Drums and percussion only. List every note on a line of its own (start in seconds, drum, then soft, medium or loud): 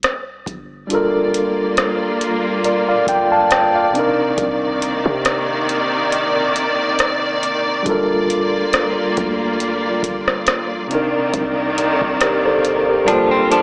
0.03 cross-stick loud
0.03 closed hi-hat medium
0.46 kick medium
0.46 closed hi-hat medium
0.90 closed hi-hat medium
1.34 closed hi-hat medium
1.77 cross-stick loud
1.77 closed hi-hat medium
2.21 closed hi-hat medium
2.64 closed hi-hat medium
3.07 kick medium
3.07 closed hi-hat medium
3.51 cross-stick loud
3.51 closed hi-hat medium
3.95 closed hi-hat medium
4.38 kick loud
4.38 closed hi-hat medium
4.82 closed hi-hat medium
5.06 kick medium
5.25 cross-stick loud
5.25 closed hi-hat medium
5.69 closed hi-hat medium
6.12 closed hi-hat medium
6.56 closed hi-hat medium
6.99 cross-stick loud
6.99 closed hi-hat medium
7.43 closed hi-hat medium
7.86 kick loud
7.86 closed hi-hat medium
8.30 closed hi-hat medium
8.73 cross-stick loud
8.73 closed hi-hat medium
9.17 kick loud
9.17 closed hi-hat medium
9.60 closed hi-hat medium
10.03 kick medium
10.03 closed hi-hat medium
10.28 cross-stick medium
10.47 cross-stick loud
10.47 closed hi-hat medium
10.91 closed hi-hat medium
11.34 kick loud
11.34 closed hi-hat medium
11.78 closed hi-hat medium
12.01 kick medium
12.21 cross-stick loud
12.21 closed hi-hat medium
12.65 closed hi-hat medium
13.08 closed hi-hat medium
13.52 closed hi-hat medium